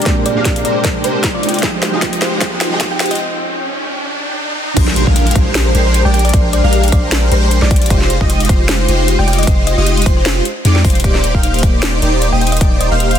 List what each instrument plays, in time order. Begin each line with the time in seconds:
Already playing: grand piano A#2 G#3 C4 G4 D5, ambient pad C3 G#3 A#3 D4 G5, riser
0.02 grand piano A#2 G#3, closed hi-hat
0.06 supersaw synth G#3 D4 G4, grand piano C4 G4 D5, synth pluck D5, kick, snare, closed hi-hat
0.26 synth pluck D5, closed hi-hat
0.34 808-style bass A#1, grand piano A#2 G#3 C4 G4, supersaw synth G#3 D4 G4 A#4 F5
0.39 grand piano D5
0.45 kick, snare, closed hi-hat
0.56 closed hi-hat
0.65 808-style bass A#1, supersaw synth G#3 D4 G4 A#4 C5, synth pluck D5, closed hi-hat
0.84 kick, snare, closed hi-hat
1.04 808-style bass A#1, supersaw synth G#3 D4 G4 A#4 C5, synth pluck C5, closed hi-hat
1.24 kick, snare, closed hi-hat
1.34 808-style bass A#1, supersaw synth G#3 D#4 F4 G4 D5, synth pluck D5
1.43 ambient pad F3 D#4, closed hi-hat
1.49 closed hi-hat
1.54 closed hi-hat
1.59 grand piano F3, closed hi-hat
1.63 supersaw synth G#3 D#4 F4 G4 C5, grand piano D#4 G4 G#4, kick, snare, closed hi-hat
1.83 snare, closed hi-hat
1.91 808-style bass F1, grand piano F3 D#4 G4, supersaw synth G#3 D#4 F4 G4 D#5
1.95 grand piano G#4
2.02 kick, snare, closed hi-hat
2.13 closed hi-hat
2.22 808-style bass F1, supersaw synth G#3 D#4 F4 G4 C5, snare, closed hi-hat
2.40 grand piano F3 D#4 G4 G#4, supersaw synth G#3 D#4 F4 G4 C5, kick, snare, closed hi-hat
2.61 snare, closed hi-hat
2.70 808-style bass F1, grand piano F3 D#4 G4 G#4, supersaw synth G#3 D#4 F4 G4 D#5
2.81 kick, snare, closed hi-hat
2.91 synth pluck G5
3.00 808-style bass F1, supersaw synth G#3 D#4 F4 G4 C5, synth pluck G5, snare, closed hi-hat
3.06 closed hi-hat
3.11 synth pluck D#5, closed hi-hat
3.15 closed hi-hat
4.77 808-style bass A#1, supersaw synth G#3 D4 G4 A#4 C5, digital synth lead C5, kick, closed hi-hat, crash, impact
4.87 snare
4.96 closed hi-hat
5.07 808-style bass A#1, supersaw synth G#3 D4 G4 A#4 F5, digital synth lead F5, kick
5.16 closed hi-hat
5.27 closed hi-hat
5.31 closed hi-hat
5.35 808-style bass A#1, supersaw synth G#3 D4 G4 A#4 C5, digital synth lead C5, kick, closed hi-hat
5.55 snare, closed hi-hat
5.75 808-style bass A#1, supersaw synth G#3 D4 G4 A#4 C5, digital synth lead C5, closed hi-hat
5.94 closed hi-hat
6.05 808-style bass A#1, supersaw synth G#3 D4 G4 A#4 D5, digital synth lead D5, synth pluck G5
6.14 synth pluck G5, closed hi-hat
6.19 closed hi-hat
6.25 synth pluck D5, closed hi-hat
6.29 closed hi-hat
6.34 808-style bass A#1, supersaw synth G#3 D4 G4 A#4, digital synth lead C5, synth pluck D5, kick, closed hi-hat
6.53 synth pluck D5, closed hi-hat
6.64 808-style bass A#1, supersaw synth G#3 D4 G4 A#4 F5, digital synth lead F5
6.73 closed hi-hat
6.84 closed hi-hat
6.88 closed hi-hat
6.92 808-style bass A#1, supersaw synth G#3 D4 G4 A#4 C5, digital synth lead C5, synth pluck D5, kick, closed hi-hat
7.12 snare, closed hi-hat
7.32 808-style bass A#1, supersaw synth G#3 D4 G4 A#4 C5, digital synth lead C5, synth pluck C5, closed hi-hat
7.51 closed hi-hat
7.62 808-style bass A#1, supersaw synth G#3 D#4 F4 G4 D5, digital synth lead D5, synth pluck D5, snare
7.71 kick, closed hi-hat
7.76 closed hi-hat
7.82 closed hi-hat
7.86 closed hi-hat
7.90 808-style bass F1, supersaw synth G#3 D#4 F4 G4 C5, digital synth lead C5, kick, closed hi-hat
8.01 snare
8.10 closed hi-hat
8.21 808-style bass F1, supersaw synth G#3 D#4 F4 G4 D#5, digital synth lead D#5, kick
8.30 closed hi-hat
8.40 closed hi-hat
8.45 closed hi-hat
8.49 808-style bass F1, supersaw synth G#3 D#4 F4 G4 C5, digital synth lead C5, kick, closed hi-hat
8.69 snare, closed hi-hat
8.88 808-style bass F1, supersaw synth G#3 D#4 F4 G4 C5, digital synth lead C5, closed hi-hat
9.08 closed hi-hat
9.19 808-style bass F1, supersaw synth G#3 D#4 F4 G4 D5, digital synth lead D5, synth pluck G5
9.28 synth pluck G5, closed hi-hat
9.33 closed hi-hat
9.38 synth pluck D#5, closed hi-hat
9.43 closed hi-hat
9.47 808-style bass F1, supersaw synth D#4, digital synth lead C5, kick, closed hi-hat
9.67 synth pluck D#5, closed hi-hat
9.78 808-style bass F1, supersaw synth G#3 D#4 F4 G4 D#5, digital synth lead D#5
9.87 closed hi-hat
9.97 closed hi-hat
10.02 closed hi-hat
10.06 808-style bass F1, supersaw synth G#3 D#4 F4 G4 C5, synth pluck C5, digital synth lead C5, kick, closed hi-hat
10.17 synth pluck C5
10.26 snare, closed hi-hat
10.45 closed hi-hat
10.65 808-style bass F2, supersaw synth G#3 D#4 F4 G4 D5, digital synth lead D5, closed hi-hat
10.76 snare
10.85 808-style bass F1, supersaw synth G#3 D#4 F4 G4 C5, digital synth lead C5, kick, open hi-hat
10.90 closed hi-hat
10.95 closed hi-hat
11.00 closed hi-hat
11.04 808-style bass D#1, supersaw synth A#3 D#4 G4 C5 D5, digital synth lead D5, kick, closed hi-hat
11.15 snare
11.24 closed hi-hat
11.35 808-style bass D#1, supersaw synth A#3 D#4 G4 C5 F5, digital synth lead F5, kick
11.43 closed hi-hat
11.54 closed hi-hat
11.59 closed hi-hat
11.63 808-style bass D#1, supersaw synth A#3 D#4 G4 C5 D5, digital synth lead D5, kick, closed hi-hat
11.83 snare, closed hi-hat
12.02 808-style bass D#1, supersaw synth A#3 D#4 G4 C5 D5, digital synth lead D5, closed hi-hat
12.22 closed hi-hat
12.32 808-style bass D#1, supersaw synth A#3 D#4 G4 C5 D#5, digital synth lead D#5, synth pluck G5
12.41 synth pluck G5, closed hi-hat
12.47 closed hi-hat
12.52 synth pluck D#5, closed hi-hat
12.57 closed hi-hat
12.61 808-style bass D#1, supersaw synth A#3 D#4 G4 C5 D5, digital synth lead D5, synth pluck D#5, kick, closed hi-hat
12.81 synth pluck D#5, closed hi-hat
12.91 808-style bass D#1, supersaw synth A#3 D#4 G4 C5 F5, digital synth lead F5
13.00 closed hi-hat
13.11 closed hi-hat
13.15 closed hi-hat